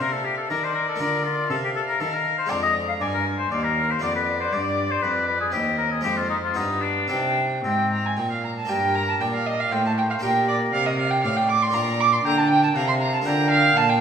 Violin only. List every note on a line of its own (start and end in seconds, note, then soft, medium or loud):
0.00 0.49 F5 medium
0.51 1.49 D5 medium
1.50 2.53 F5 medium
2.51 3.03 A#5 medium
3.01 3.51 G#5 medium
3.52 4.03 F5 medium
4.01 5.53 D5 medium
5.53 6.07 D#5 medium
6.05 6.58 C5 medium
6.56 7.12 B4 medium
7.11 7.59 G5 medium
7.66 7.90 G5 medium
7.93 8.07 A#5 medium
8.06 8.20 G#5 medium
8.18 8.31 G5 medium
8.31 8.44 F5 medium
8.45 8.50 A#5 medium
8.58 8.71 A5 medium
8.69 8.97 G5 medium
8.95 9.08 A#5 medium
9.09 9.14 A5 medium
9.20 9.26 G5 medium
9.34 9.48 F5 medium
9.46 9.61 D#5 medium
9.60 9.74 F5 medium
9.72 9.85 G5 medium
9.86 9.91 A5 medium
9.98 10.03 G5 medium
10.10 10.15 F5 medium
10.23 10.47 G5 medium
10.48 10.56 D5 medium
10.73 10.88 F5 medium
10.86 10.98 D#5 medium
10.99 11.12 F5 medium
11.11 11.24 G5 medium
11.24 11.38 F5 medium
11.37 11.50 G5 medium
11.49 11.64 D6 medium
11.62 11.75 C6 medium
11.74 12.02 A#5 medium
12.00 12.12 D6 loud
12.13 12.18 C6 medium
12.24 12.39 A#5 loud
12.38 12.49 A5 medium
12.50 12.63 G5 loud
12.63 12.68 A5 medium
12.75 12.87 A#5 loud
12.88 12.93 C6 medium
13.01 13.13 A#5 medium
13.14 13.19 A5 medium
13.26 13.50 A#5 medium
13.50 13.78 F5 loud
13.77 13.91 A5 loud
13.89 14.01 G5 medium